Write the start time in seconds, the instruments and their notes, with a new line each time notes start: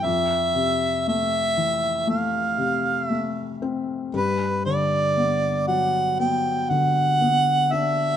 0.04 felt piano F2, harmonica E5
0.55 felt piano C3
1.08 felt piano A3, harmonica E5
1.57 felt piano E3
2.07 felt piano A3, harmonica F5
2.58 felt piano C3
3.06 harmonica E5
3.10 felt piano A3
3.62 felt piano C4
4.14 felt piano G2, harmonica B4
4.66 felt piano D3, harmonica D5
5.17 felt piano B3
5.67 felt piano F#3, harmonica F#5
6.20 felt piano B3, harmonica G5
6.70 felt piano D3, harmonica F#5
7.21 felt piano B3
7.72 felt piano D4, harmonica E5